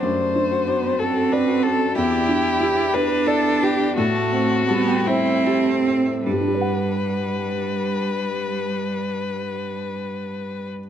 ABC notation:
X:1
M:6/8
L:1/16
Q:3/8=53
K:G
V:1 name="Harp"
[Ddf]3 F D C F F D F A A | E d3 E d3 E2 B B | A a2 c' A g c c A c e e | z12 |
z12 |]
V:2 name="Violin"
c6 A2 B2 A2 | G6 B2 A2 G2 | F6 E3 z3 | B12- |
B12 |]
V:3 name="Felt piano"
F,,2 D2 F2 A2 d2 F2 | E,,2 D2 G2 B2 d2 G2 | A,,2 C2 G,2 c2 G2 C2 | [G,,G,DGBf]12- |
[G,,G,DGBf]12 |]
V:4 name="Cello"
A,4 B,2 C6 | E6 D6 | A,4 B,2 C6 | G,12- |
G,12 |]